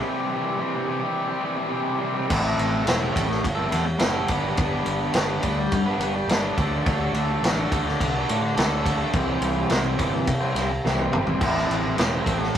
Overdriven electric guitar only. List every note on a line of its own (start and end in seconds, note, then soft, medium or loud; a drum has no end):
0.02 0.57 C3 loud
0.02 0.30 E3 medium
0.02 0.31 G3 loud
0.02 0.32 C4 medium
0.02 0.33 G4 loud
0.31 0.59 E3 medium
0.31 0.59 G3 medium
0.31 0.60 C4 medium
0.31 0.61 G4 medium
0.58 1.01 C3 medium
0.58 0.86 E3 medium
0.58 0.75 G3 medium
0.58 0.74 C4 loud
0.58 0.72 G4 medium
0.73 0.87 G3 medium
0.73 0.88 C4 medium
0.73 0.89 G4 medium
0.87 1.30 E3 medium
0.87 1.02 G3 medium
0.87 1.02 C4 medium
0.87 1.00 G4 medium
1.01 1.31 G3 medium
1.01 1.29 C4 medium
1.01 1.28 G4 medium
1.29 1.43 G3 medium
1.29 1.43 C4 medium
1.29 1.44 G4 medium
1.43 1.70 E3 medium
1.43 1.58 G3 medium
1.43 1.57 C4 medium
1.43 1.55 G4 medium
1.57 1.71 G3 medium
1.57 1.72 C4 medium
1.57 1.73 G4 medium
1.71 2.27 C3 medium
1.71 1.98 E3 medium
1.71 2.00 G3 medium
1.71 2.00 C4 medium
1.71 2.01 G4 loud
1.99 2.27 E3 medium
1.99 2.17 G3 medium
1.99 2.16 C4 medium
1.99 2.14 G4 medium
2.15 2.29 G3 medium
2.15 2.29 C4 medium
2.15 2.28 G4 medium
2.29 2.72 A2 loud
2.29 2.85 A3 loud
2.29 2.45 C4 loud
2.29 2.44 E4 loud
2.29 2.43 A4 loud
2.44 2.86 C4 medium
2.44 2.86 E4 medium
2.44 2.87 A4 medium
2.85 3.43 A2 loud
2.85 3.12 A3 loud
2.85 3.13 C4 loud
2.85 3.14 E4 loud
2.85 3.16 A4 loud
3.13 3.29 A3 medium
3.13 3.28 C4 medium
3.13 3.27 E4 medium
3.13 3.28 A4 medium
3.28 muted overdriven electric guitar stroke medium
3.55 3.70 C4 medium
3.55 3.70 E4 medium
3.55 3.72 A4 medium
3.69 3.87 A3 medium
3.69 3.85 C4 medium
3.69 3.85 E4 medium
3.69 3.86 A4 medium
3.86 muted overdriven electric guitar stroke soft
3.99 4.26 A2 medium
3.99 4.28 A3 loud
3.99 4.28 C4 loud
3.99 4.28 E4 loud
3.99 4.30 A4 loud
4.28 4.54 G3 loud
4.28 4.42 B3 loud
4.28 4.44 D4 medium
4.28 4.40 B4 loud
4.41 4.56 B3 medium
4.41 4.55 D4 medium
4.41 4.56 B4 medium
4.55 4.99 G3 loud
4.55 4.70 B3 loud
4.55 4.72 D4 loud
4.55 4.69 B4 loud
4.70 5.14 B3 medium
4.70 5.14 D4 medium
4.70 5.15 B4 medium
5.14 5.42 G3 medium
5.14 5.43 B3 medium
5.14 5.43 D4 loud
5.14 5.44 B4 loud
5.43 5.86 G3 medium
5.43 5.57 B3 medium
5.43 5.57 D4 medium
5.43 5.57 B4 medium
5.59 muted overdriven electric guitar stroke medium
5.86 6.01 B3 medium
5.86 6.00 D4 medium
5.86 6.02 B4 medium
6.00 6.28 G3 medium
6.00 6.14 B3 medium
6.00 6.14 D4 medium
6.00 6.13 B4 medium
6.14 muted overdriven electric guitar stroke medium
6.29 6.55 G3 medium
6.29 6.56 B3 loud
6.29 6.56 D4 medium
6.29 6.57 B4 loud
6.57 6.85 D3 loud
6.57 6.74 D4 loud
6.57 6.73 F#4 medium
6.57 6.72 A4 loud
6.73 6.87 D4 medium
6.73 6.88 F#4 medium
6.73 6.89 A4 medium
6.86 7.28 D3 loud
6.86 7.02 D4 loud
6.86 7.00 F#4 loud
6.86 6.99 A4 loud
7.00 7.42 D4 medium
7.00 7.43 F#4 medium
7.00 7.45 A4 medium
7.42 7.70 D3 medium
7.42 7.71 D4 loud
7.42 7.72 F#4 loud
7.42 7.74 A4 loud
7.71 8.13 D3 medium
7.71 7.86 D4 medium
7.71 7.86 F#4 medium
7.71 7.86 A4 medium
7.87 muted overdriven electric guitar stroke medium
8.14 8.27 D4 medium
8.14 8.28 F#4 medium
8.14 8.30 A4 medium
8.27 8.54 D3 medium
8.27 8.41 D4 medium
8.27 8.42 F#4 medium
8.27 8.42 A4 medium
8.42 muted overdriven electric guitar stroke medium
8.55 8.82 D3 medium
8.55 8.84 D4 medium
8.55 8.84 F#4 loud
8.55 8.86 A4 loud
8.84 9.11 D3 medium
8.84 9.00 D4 medium
8.84 8.98 F#4 medium
8.84 8.97 A4 medium
8.97 9.12 D4 medium
8.97 9.12 F#4 medium
8.97 9.15 A4 medium
9.12 9.55 C3 loud
9.12 9.70 E3 loud
9.12 9.29 G3 medium
9.12 9.27 C4 loud
9.12 9.27 E4 loud
9.12 9.25 C5 loud
9.26 9.71 G3 medium
9.26 9.72 C4 medium
9.26 9.72 E4 medium
9.26 9.72 C5 medium
9.70 10.26 C3 loud
9.70 10.27 E3 medium
9.70 9.99 G3 loud
9.70 9.99 C4 loud
9.70 10.00 E4 loud
9.70 10.01 C5 medium
9.99 10.14 G3 medium
9.99 10.14 C4 medium
9.99 10.14 E4 medium
9.99 10.13 C5 medium
10.14 muted overdriven electric guitar stroke medium
10.41 10.54 G3 medium
10.41 10.54 C4 medium
10.41 10.55 E4 medium
10.41 10.57 C5 medium
10.54 10.71 G3 medium
10.54 10.69 C4 medium
10.54 10.70 E4 medium
10.54 10.69 C5 medium
10.70 muted overdriven electric guitar stroke soft
10.85 11.39 C3 loud
10.85 11.40 E3 loud
10.85 11.12 G3 medium
10.85 11.12 C4 medium
10.85 11.14 E4 medium
10.85 11.14 C5 loud
11.12 11.29 G3 medium
11.12 11.28 C4 medium
11.12 11.27 E4 medium
11.12 11.26 C5 loud
11.27 11.41 G3 medium
11.27 11.40 C4 medium
11.27 11.40 E4 medium
11.27 11.39 C5 medium
11.41 11.83 A2 loud
11.41 11.97 A3 loud
11.41 11.57 C4 loud
11.41 11.55 E4 loud
11.41 11.53 C5 loud
11.55 11.96 C4 medium
11.55 11.97 E4 medium
11.55 11.98 C5 medium
11.96 12.53 A2 loud
11.96 12.24 A3 medium
11.96 12.24 C4 loud
11.96 12.25 E4 loud
11.96 12.26 C5 loud
12.24 12.39 A3 medium
12.24 12.39 C4 medium
12.24 12.38 E4 medium
12.24 12.38 C5 medium
12.39 muted overdriven electric guitar stroke medium